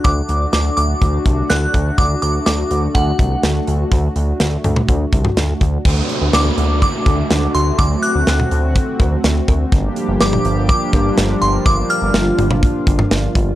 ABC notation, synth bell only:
X:1
M:4/4
L:1/8
Q:1/4=124
K:Dphr
V:1 name="Synth bell"
d'2 d' d'3 ^f'2 | d' d' d'2 ^f4- | ^f6 z2 | z2 d'2 d'3 c' |
d' ^f'2 z4 z | z2 d'2 d'3 c' | d' f'2 z4 z |]